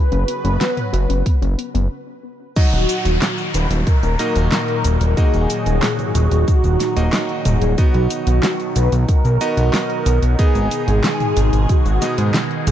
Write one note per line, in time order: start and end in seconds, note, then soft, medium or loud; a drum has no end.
0.00 1.87 C#3 medium
0.00 1.89 F#3 medium
0.00 1.89 B3 medium
0.00 1.89 F#4 medium
0.00 1.87 B4 loud
0.00 1.89 B4 medium
0.11 0.25 F#1 medium
0.11 0.24 C#4 medium
0.11 closed hi-hat soft
0.28 0.40 B3 medium
0.28 closed hi-hat medium
0.44 0.58 F#1 medium
0.44 0.56 C#4 medium
0.44 closed hi-hat medium
0.60 0.76 F#4 medium
0.60 snare loud
0.60 closed hi-hat medium
0.77 0.89 B4 medium
0.77 closed hi-hat soft
0.77 mid tom medium
0.93 1.07 F#1 medium
0.93 1.08 F#4 medium
0.93 closed hi-hat medium
1.09 1.23 F#1 medium
1.09 1.22 C#4 medium
1.09 closed hi-hat medium
1.25 1.38 B3 medium
1.25 kick loud
1.25 closed hi-hat medium
1.42 1.56 F#1 medium
1.42 1.49 C#4 medium
1.42 closed hi-hat soft
1.58 1.66 B3 medium
1.58 closed hi-hat medium
1.74 1.88 F#1 medium
1.74 1.87 B3 medium
1.74 closed hi-hat soft
2.56 7.74 A#2 medium
2.56 12.71 D#3 medium
2.56 10.35 F#3 medium
2.56 4.15 F#3 medium
2.56 10.35 D#4 medium
2.56 4.15 D#4 medium
2.56 10.35 F#4 medium
2.56 3.50 F#4 loud
2.56 4.15 F#4 medium
2.56 4.15 D#5 medium
2.56 kick loud
2.56 closed hi-hat medium
2.56 crash loud
2.56 downlifter medium
2.56 cabasa soft
2.73 2.86 D#1 medium
2.73 closed hi-hat soft
2.89 closed hi-hat loud
2.89 cabasa medium
3.05 3.19 D#1 medium
3.05 closed hi-hat medium
3.05 cabasa soft
3.22 snare loud
3.22 clap medium
3.22 closed hi-hat medium
3.22 cabasa soft
3.38 closed hi-hat soft
3.38 cabasa soft
3.54 3.68 D#1 medium
3.54 3.68 B4 loud
3.54 closed hi-hat medium
3.54 cabasa medium
3.70 3.84 D#1 medium
3.70 closed hi-hat medium
3.70 cabasa soft
3.87 4.51 A#4 loud
3.87 kick loud
3.87 closed hi-hat medium
3.87 cabasa soft
4.03 4.17 D#1 medium
4.03 closed hi-hat soft
4.03 cabasa soft
4.19 5.13 A#3 loud
4.19 5.13 D#4 medium
4.19 5.13 F#4 medium
4.19 5.13 D#5 loud
4.19 closed hi-hat medium
4.19 cabasa medium
4.36 4.49 D#1 medium
4.36 closed hi-hat medium
4.36 cabasa soft
4.52 5.19 A#4 loud
4.52 snare loud
4.52 clap medium
4.52 closed hi-hat medium
4.52 cabasa soft
4.68 closed hi-hat soft
4.84 4.98 D#1 medium
4.84 closed hi-hat loud
4.84 cabasa medium
5.01 5.14 D#1 medium
5.01 closed hi-hat medium
5.01 cabasa soft
5.17 6.93 A#3 medium
5.17 6.93 D#4 medium
5.17 6.93 F#4 medium
5.17 6.52 G#4 loud
5.17 6.93 D#5 medium
5.17 kick loud
5.17 closed hi-hat medium
5.17 cabasa soft
5.34 5.47 D#1 medium
5.34 closed hi-hat soft
5.34 cabasa soft
5.50 closed hi-hat loud
5.50 cabasa medium
5.66 5.80 D#1 medium
5.66 closed hi-hat medium
5.66 cabasa soft
5.83 snare loud
5.83 clap loud
5.83 closed hi-hat medium
5.83 cabasa soft
5.99 closed hi-hat soft
5.99 mid tom medium
5.99 cabasa soft
6.15 6.29 D#1 medium
6.15 closed hi-hat loud
6.15 cabasa medium
6.31 6.45 D#1 medium
6.31 closed hi-hat medium
6.31 cabasa soft
6.48 7.09 F#4 medium
6.48 kick loud
6.48 closed hi-hat medium
6.48 cabasa soft
6.64 6.77 D#1 medium
6.64 closed hi-hat soft
6.64 cabasa soft
6.80 snare soft
6.80 closed hi-hat medium
6.80 cabasa medium
6.96 7.10 D#1 medium
6.96 7.74 A#3 medium
6.96 7.74 D#4 medium
6.96 7.74 F#4 medium
6.96 7.74 D#5 medium
6.96 closed hi-hat medium
6.96 cabasa soft
7.13 snare loud
7.13 clap medium
7.13 closed hi-hat medium
7.13 cabasa soft
7.29 closed hi-hat soft
7.45 7.59 D#1 medium
7.45 7.76 G#4 loud
7.45 closed hi-hat loud
7.45 mid tom medium
7.45 cabasa medium
7.62 7.75 D#1 medium
7.62 closed hi-hat medium
7.62 cabasa soft
7.78 10.36 B2 medium
7.78 9.37 B3 medium
7.78 9.37 D#4 medium
7.78 9.37 F#4 medium
7.78 8.79 F#4 loud
7.78 9.37 D#5 medium
7.78 kick loud
7.78 closed hi-hat medium
7.78 cabasa soft
7.94 8.08 B1 medium
7.94 closed hi-hat soft
8.10 closed hi-hat loud
8.10 cabasa medium
8.27 8.40 B1 medium
8.27 closed hi-hat medium
8.27 cabasa soft
8.43 snare loud
8.43 clap loud
8.43 closed hi-hat medium
8.43 cabasa soft
8.60 closed hi-hat soft
8.60 cabasa soft
8.76 8.89 B1 medium
8.76 8.90 B4 loud
8.76 closed hi-hat medium
8.76 cabasa medium
8.92 9.06 B1 medium
8.92 closed hi-hat medium
8.92 cabasa soft
9.08 9.73 A#4 loud
9.08 kick loud
9.08 closed hi-hat medium
9.08 cabasa soft
9.25 9.38 B1 medium
9.25 closed hi-hat soft
9.25 cabasa soft
9.41 10.35 B3 loud
9.41 10.35 D#4 medium
9.41 10.35 F#4 medium
9.41 10.35 D#5 loud
9.41 closed hi-hat medium
9.41 cabasa medium
9.57 9.71 B1 medium
9.57 closed hi-hat medium
9.57 cabasa soft
9.74 10.41 A#4 loud
9.74 snare loud
9.74 clap medium
9.74 closed hi-hat medium
9.74 cabasa soft
9.90 closed hi-hat soft
10.06 10.20 B1 loud
10.06 closed hi-hat medium
10.06 cabasa medium
10.22 10.36 B1 medium
10.22 closed hi-hat medium
10.22 cabasa soft
10.39 12.71 B2 medium
10.39 12.71 G#3 medium
10.39 11.99 B3 medium
10.39 12.71 D#4 medium
10.39 11.99 D#4 medium
10.39 11.99 G#4 medium
10.39 12.71 G#4 medium
10.39 11.73 G#4 loud
10.39 11.99 D#5 medium
10.39 kick loud
10.39 closed hi-hat medium
10.39 cabasa soft
10.55 10.69 G#1 medium
10.55 closed hi-hat soft
10.55 cabasa soft
10.71 closed hi-hat medium
10.71 cabasa medium
10.88 11.01 G#1 medium
10.88 closed hi-hat medium
10.88 cabasa soft
11.04 snare loud
11.04 clap medium
11.04 closed hi-hat medium
11.04 cabasa soft
11.20 closed hi-hat soft
11.20 mid tom medium
11.20 cabasa soft
11.37 11.50 G#1 medium
11.37 closed hi-hat medium
11.37 cabasa medium
11.53 11.66 G#1 medium
11.53 closed hi-hat medium
11.53 cabasa soft
11.69 12.31 F#4 medium
11.69 kick loud
11.69 closed hi-hat soft
11.69 cabasa soft
11.86 11.99 G#1 medium
11.86 closed hi-hat soft
11.86 cabasa soft
12.02 12.71 B3 medium
12.02 12.71 D#4 medium
12.02 12.71 G#4 medium
12.02 12.71 D#5 medium
12.02 snare soft
12.02 closed hi-hat medium
12.02 cabasa medium
12.18 12.32 G#2 medium
12.18 closed hi-hat medium
12.18 cabasa soft
12.34 snare loud
12.34 clap medium
12.34 closed hi-hat medium
12.34 cabasa soft
12.51 closed hi-hat soft
12.67 12.71 G#1 medium
12.67 12.71 G#4 medium
12.67 closed hi-hat medium
12.67 mid tom loud
12.67 cabasa medium